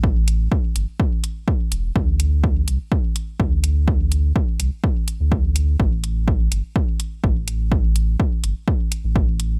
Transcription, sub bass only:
X:1
M:4/4
L:1/16
Q:"Swing 16ths" 1/4=125
K:Aphr
V:1 name="Sub bass" clef=bass
A,,,4 z2 G,,, z6 z E,,,2 | D,,6 C,, z4 z D,,4- | D,,4 z2 C,, z4 D,,4- D,, | A,,,6 G,,, z4 z A,,,4- |
A,,,4 z2 G,,, z4 A,,,4- A,,, |]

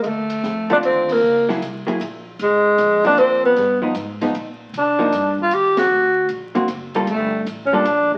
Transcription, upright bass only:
X:1
M:3/4
L:1/8
Q:"Swing" 1/4=154
K:Dphr
V:1 name="Upright bass" clef=bass
D,,2 F,,2 E,,2 | _D,,2 C,, z B,,,2 | _A,,,2 B,,,2 F,,2 | G,,2 _A,,2 ^A,,2 |
C,2 G,,2 E,,2 | D,,2 B,,,2 ^F,,,2 | G,,,2 A,,,2 B,,,2 |]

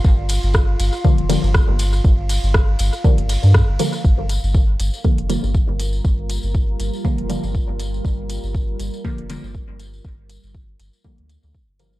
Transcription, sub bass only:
X:1
M:4/4
L:1/16
Q:"Swing 16ths" 1/4=120
K:Gm
V:1 name="Sub bass" clef=bass
G,,,3 G,,,3 G,,, z2 F,,,2 G,,,2 G,,,3 | G,,,3 G,,,3 G,,, z2 G,,,2 G,,2 G,,, z2 | G,,,3 G,,,3 G,,, z2 F,,,2 G,,,2 G,,,3 | G,,,3 G,,,3 G,,, z2 F,,,2 G,,,2 G,,,3 |
G,,,3 G,,,3 G,,, z2 F,,,2 G,,,2 G,,,3 | G,,,3 G,,,3 G,,, z2 D,,2 D,, z G,,,3 |]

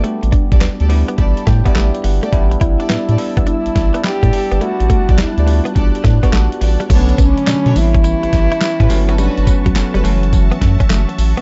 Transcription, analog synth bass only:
X:1
M:4/4
L:1/16
Q:"Swing 16ths" 1/4=105
K:Amix
V:1 name="Analog synth bass" clef=bass
z A,,, z B,,, D,, D,,2 z A,,, z A,, z A,,, z G,,, z | A,,,2 A,,, z A,, A,, z A,,, z A,,, A,,, z2 A,, z G,,, | z A,,, z B,,, D,, D,,2 z A,,, z A,, z A,,, z A,,, z | B,,,2 B,,, z B,, B,, A,,,3 A,,, A,,, z2 A,, G,,,2- |
G,,, G,,, z A,,, F,,, F,,, F,,,4 F,, z F,,, z A,,, z |]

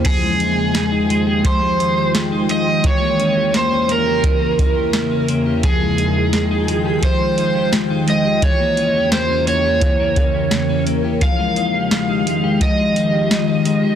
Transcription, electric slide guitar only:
X:1
M:4/4
L:1/8
Q:1/4=86
K:Fm
V:1 name="Electric slide guitar"
A4 c2 z e | ^c2 =c B4 z | A4 c2 z e | ^c2 =c ^c4 z |
f4 e4 |]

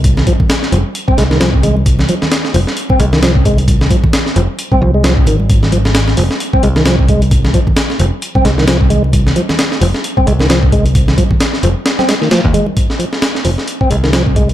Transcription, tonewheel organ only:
X:1
M:4/4
L:1/16
Q:"Swing 16ths" 1/4=132
K:Cdor
V:1 name="Tonewheel organ" clef=bass
z2 F, z3 F, z2 C _A, E, F, z A, z | z2 F, z3 F, z2 C _A, E, F, z A, z | z2 F, z3 F, z2 C F, _A, F, z E, z | z2 F, z3 F, z2 C _A, E, F, z A, z |
z2 F, z3 F, z2 C _A, E, F, z A, z | z2 F, z3 F, z2 C _A, E, F, z A, z | z2 F, z3 F, z2 C _A, E, F, z A, z | z2 F, z3 F, z2 C _A, E, F, z A, z |]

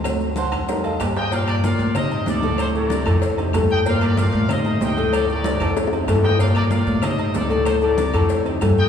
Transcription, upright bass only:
X:1
M:4/4
L:1/8
Q:1/4=189
K:Gm
V:1 name="Upright bass" clef=bass
D,,3 F,,3 G,,2- | G,,3 A,,3 D,,2- | D,,3 F,,3 G,,2- | G,,3 A,,3 D,,2- |
D,,3 F,,3 G,,2- | G,,3 A,,3 D,,2- | D,,3 F,,3 G,,2 |]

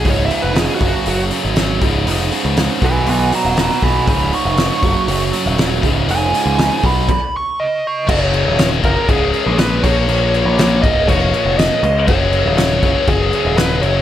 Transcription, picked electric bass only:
X:1
M:4/4
L:1/16
Q:1/4=120
K:Gb
V:1 name="Picked electric bass" clef=bass
D,,,2 z F,,,2 z G,,, z G,,,2 z A,,,3 D,,,2 | F,,,2 z D,,2 z C,,2 C,,2 z E,,,2 z C,,2 | D,,,2 z F,,,2 z G,,, z G,,,2 z E,,,3 D,,,2 | F,,,2 z D,,2 z C,,2 z8 |
G,,,3 E,,,3 G,,, z D,,,2 z B,,,3 B,,,2 | B,,,3 B,,,3 D,,,2 F,,,2 z F,,,2 z D,,2 | G,,,3 E,,,3 G,,, z G,,,2 z E,,,3 G,,,2 |]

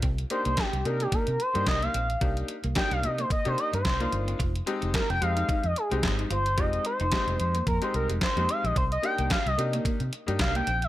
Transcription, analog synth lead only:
X:1
M:4/4
L:1/16
Q:"Swing 16ths" 1/4=110
K:Cm
V:1 name="Analog synth lead"
z2 c c G2 B G B2 c c e f3- | f z3 g f e c e c e c4- c- | c z3 B g f3 e A2 z2 c2 | e2 c6 B c B2 c2 f e |
c e g2 f e2 z4 z f g2 e |]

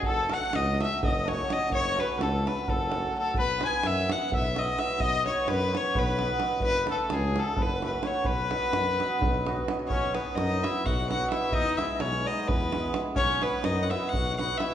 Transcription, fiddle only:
X:1
M:7/8
L:1/16
Q:1/4=128
K:Bmix
V:1 name="Fiddle"
A2 f2 d2 e2 d2 c2 d2 | c2 B2 A2 B2 A4 A2 | B2 g2 e2 f2 e2 d2 e2 | d2 c2 B2 c2 B6 |
B2 A2 G2 A2 B2 B2 c2 | B12 z2 | c2 B2 d2 e2 f2 f2 e2 | d2 e2 c2 d2 B4- B/2 z3/2 |
c2 B2 d3/2 f/2 e2 f2 f2 e2 |]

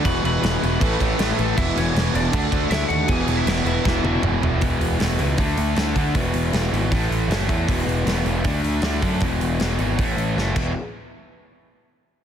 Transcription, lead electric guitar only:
X:1
M:4/4
L:1/16
Q:1/4=157
K:Dlyd
V:1 name="Lead electric guitar"
[Bb]2 [Bb]2 [Bb]8- [Bb]2 z2 | [Ee]2 [Cc]4 [Dd]4 z2 [Ee]2 [Ff]2 | [Gg]3 [Ee] [Ee]2 [Ee]6 z4 | z16 |
z16 | z16 | z16 | z16 |]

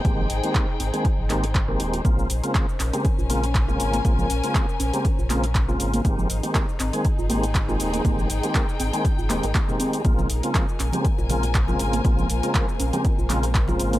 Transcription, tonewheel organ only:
X:1
M:4/4
L:1/16
Q:"Swing 16ths" 1/4=120
K:Bbdor
V:1 name="Tonewheel organ"
[E,A,B,CG]2 z [E,A,B,CG]2 z2 [E,A,B,CA] z2 [E,A,B,CG] z2 [E,A,B,CG]3 | [D,A,B,CF]2 z [D,A,B,CF]2 z2 [D,A,B,CG] z2 [D,A,B,CF] z2 [D,A,B,CF]3 | [D,A,B,CF]2 z [D,A,B,CF]2 z2 [D,A,B,CG] z2 [D,A,B,CF] z2 [D,A,B,CF]3 | [E,A,B,CG]2 z [E,A,B,CG]2 z2 [E,A,B,CA] z2 [E,A,B,CG] z2 [E,A,B,CG]3 |
[E,A,B,CG]2 z [E,A,B,CG]2 z2 [E,A,B,CA] z2 [E,A,B,CG] z2 [E,A,B,CG]3 | [D,A,B,CF]2 z [D,A,B,CF]2 z2 [D,A,B,CG] z2 [D,A,B,CF] z2 [D,A,B,CF]3 | [D,A,B,CF]2 z [D,A,B,CF]2 z2 [D,A,B,CG] z2 [D,A,B,CF] z2 [D,A,B,CF]3 |]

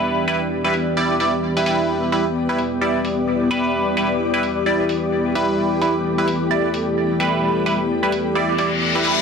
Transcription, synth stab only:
X:1
M:4/4
L:1/16
Q:"Swing 16ths" 1/4=130
K:Em
V:1 name="Synth stab"
[G,EB]2 [G,EB] z2 [G,EB] z2 [G,Ed] z [G,Ed] z2 [G,EB] [G,EB]2- | [G,EB]2 [G,EB] z2 [G,EB] z2 [G,Ed] z4 z [G,EB]2- | [G,EB]2 [G,EB] z2 [G,EB] z2 [G,Ed] z4 z [G,EB]2- | [G,EB]2 [G,EB] z2 [G,EB] z2 [G,Ed] z4 z [G,EB]2- |
[G,EB]2 [G,EB] z2 [G,EB] z2 [G,Ed] z [G,Ed] z2 [G,EB] [G,EB]2 |]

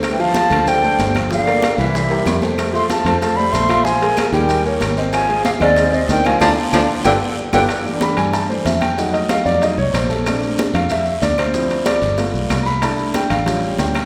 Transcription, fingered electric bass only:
X:1
M:4/4
L:1/8
Q:1/4=187
K:Flyd
V:1 name="Fingered electric bass" clef=bass
D,,3 D,,3 G,,,2- | G,,,3 C,,3 F,,2- | F,,3 F,,3 _B,,,2- | _B,,,3 _E,,3 _A,,,2- |
_A,,,3 _E,,3 D,,2 | D,, z D,, z G,,, z2 G,,, | z3 G,,3 F,,2- | F,,3 F,,2 C,, _B,,,2- |
_B,,,3 F,,3 D,,2- | D,,3 G,,,2 B,,, C,,2- | C,,3 A,,,3 D,,2 |]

